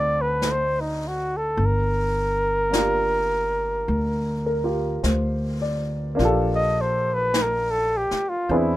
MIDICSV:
0, 0, Header, 1, 6, 480
1, 0, Start_track
1, 0, Key_signature, -2, "minor"
1, 0, Tempo, 1153846
1, 659, Time_signature, 4, 2, 24, 8
1, 3647, End_track
2, 0, Start_track
2, 0, Title_t, "Flugelhorn"
2, 0, Program_c, 0, 56
2, 0, Note_on_c, 0, 74, 103
2, 89, Note_on_c, 0, 71, 86
2, 95, Note_off_c, 0, 74, 0
2, 214, Note_on_c, 0, 72, 95
2, 220, Note_off_c, 0, 71, 0
2, 336, Note_on_c, 0, 63, 72
2, 342, Note_off_c, 0, 72, 0
2, 448, Note_on_c, 0, 66, 80
2, 454, Note_off_c, 0, 63, 0
2, 569, Note_on_c, 0, 69, 80
2, 575, Note_off_c, 0, 66, 0
2, 688, Note_on_c, 0, 70, 95
2, 695, Note_off_c, 0, 69, 0
2, 2112, Note_off_c, 0, 70, 0
2, 2726, Note_on_c, 0, 75, 86
2, 2834, Note_on_c, 0, 72, 89
2, 2840, Note_off_c, 0, 75, 0
2, 2970, Note_on_c, 0, 71, 88
2, 2976, Note_off_c, 0, 72, 0
2, 3088, Note_on_c, 0, 70, 83
2, 3094, Note_off_c, 0, 71, 0
2, 3206, Note_on_c, 0, 69, 90
2, 3213, Note_off_c, 0, 70, 0
2, 3316, Note_on_c, 0, 67, 92
2, 3323, Note_off_c, 0, 69, 0
2, 3449, Note_on_c, 0, 65, 82
2, 3455, Note_off_c, 0, 67, 0
2, 3566, Note_on_c, 0, 64, 76
2, 3572, Note_off_c, 0, 65, 0
2, 3647, Note_off_c, 0, 64, 0
2, 3647, End_track
3, 0, Start_track
3, 0, Title_t, "Grand piano"
3, 0, Program_c, 1, 0
3, 0, Control_c, 1, 64, 127
3, 0, Note_on_c, 1, 60, 52
3, 0, Note_on_c, 1, 62, 47
3, 0, Note_on_c, 1, 63, 51
3, 0, Note_on_c, 1, 66, 53
3, 0, Note_on_c, 1, 69, 63
3, 653, Note_off_c, 1, 60, 0
3, 654, Note_off_c, 1, 62, 0
3, 657, Note_off_c, 1, 63, 0
3, 661, Note_off_c, 1, 66, 0
3, 664, Note_off_c, 1, 69, 0
3, 664, Control_c, 1, 64, 0
3, 728, Control_c, 1, 64, 127
3, 1123, Note_on_c, 1, 58, 46
3, 1133, Note_on_c, 1, 62, 46
3, 1145, Note_on_c, 1, 65, 45
3, 1154, Note_on_c, 1, 67, 48
3, 1857, Note_on_c, 1, 70, 49
3, 1924, Note_off_c, 1, 65, 0
3, 1928, Note_off_c, 1, 67, 0
3, 1930, Note_on_c, 1, 65, 44
3, 1934, Note_on_c, 1, 67, 42
3, 2094, Note_on_c, 1, 72, 50
3, 2200, Note_off_c, 1, 70, 0
3, 2337, Note_on_c, 1, 74, 50
3, 2477, Note_off_c, 1, 72, 0
3, 2552, Note_off_c, 1, 58, 0
3, 2558, Note_on_c, 1, 58, 66
3, 2559, Note_off_c, 1, 62, 0
3, 2565, Note_on_c, 1, 62, 58
3, 2575, Note_off_c, 1, 65, 0
3, 2577, Note_off_c, 1, 67, 0
3, 2581, Note_on_c, 1, 65, 55
3, 2590, Note_on_c, 1, 67, 55
3, 2599, Note_on_c, 1, 69, 66
3, 2680, Note_off_c, 1, 74, 0
3, 3528, Note_off_c, 1, 58, 0
3, 3532, Note_off_c, 1, 62, 0
3, 3533, Note_on_c, 1, 60, 55
3, 3539, Note_off_c, 1, 65, 0
3, 3540, Note_on_c, 1, 62, 54
3, 3540, Note_on_c, 1, 64, 52
3, 3541, Note_on_c, 1, 71, 58
3, 3542, Control_c, 1, 64, 0
3, 3542, Note_on_c, 1, 68, 55
3, 3544, Note_off_c, 1, 67, 0
3, 3549, Note_off_c, 1, 69, 0
3, 3617, Control_c, 1, 64, 127
3, 3647, Note_off_c, 1, 60, 0
3, 3647, Note_off_c, 1, 62, 0
3, 3647, Note_off_c, 1, 64, 0
3, 3647, Note_off_c, 1, 68, 0
3, 3647, Note_off_c, 1, 71, 0
3, 3647, End_track
4, 0, Start_track
4, 0, Title_t, "Upright bass"
4, 0, Program_c, 2, 32
4, 0, Note_on_c, 2, 38, 89
4, 643, Note_off_c, 2, 38, 0
4, 655, Note_on_c, 2, 31, 89
4, 1598, Note_off_c, 2, 31, 0
4, 1615, Note_on_c, 2, 38, 81
4, 2079, Note_off_c, 2, 38, 0
4, 2095, Note_on_c, 2, 38, 79
4, 2559, Note_off_c, 2, 38, 0
4, 2575, Note_on_c, 2, 34, 92
4, 3356, Note_off_c, 2, 34, 0
4, 3533, Note_on_c, 2, 40, 86
4, 3647, Note_off_c, 2, 40, 0
4, 3647, End_track
5, 0, Start_track
5, 0, Title_t, "Muted upright bass strokes"
5, 3377, Note_on_c, 9, 29, 37
5, 3419, Note_off_c, 9, 29, 0
5, 3647, End_track
6, 0, Start_track
6, 0, Title_t, "Drums"
6, 175, Note_on_c, 9, 25, 41
6, 175, Note_on_c, 9, 38, 51
6, 175, Note_on_c, 9, 44, 54
6, 216, Note_off_c, 9, 38, 0
6, 216, Note_off_c, 9, 44, 0
6, 657, Note_off_c, 9, 25, 0
6, 657, Note_on_c, 9, 25, 34
6, 1137, Note_off_c, 9, 25, 0
6, 1137, Note_on_c, 9, 25, 40
6, 1137, Note_on_c, 9, 38, 56
6, 1137, Note_on_c, 9, 44, 61
6, 1179, Note_off_c, 9, 38, 0
6, 1179, Note_off_c, 9, 44, 0
6, 1616, Note_off_c, 9, 25, 0
6, 1616, Note_on_c, 9, 25, 39
6, 2095, Note_off_c, 9, 25, 0
6, 2095, Note_on_c, 9, 25, 37
6, 2095, Note_on_c, 9, 38, 51
6, 2095, Note_on_c, 9, 44, 50
6, 2137, Note_off_c, 9, 38, 0
6, 2137, Note_off_c, 9, 44, 0
6, 2576, Note_off_c, 9, 25, 0
6, 2576, Note_on_c, 9, 25, 34
6, 2576, Note_on_c, 9, 38, 29
6, 2617, Note_off_c, 9, 38, 0
6, 3053, Note_off_c, 9, 25, 0
6, 3053, Note_on_c, 9, 25, 39
6, 3053, Note_on_c, 9, 38, 54
6, 3053, Note_on_c, 9, 44, 62
6, 3095, Note_off_c, 9, 38, 0
6, 3095, Note_off_c, 9, 44, 0
6, 3374, Note_on_c, 9, 38, 30
6, 3416, Note_off_c, 9, 38, 0
6, 3536, Note_off_c, 9, 25, 0
6, 3536, Note_on_c, 9, 25, 37
6, 3647, Note_off_c, 9, 25, 0
6, 3647, End_track
0, 0, End_of_file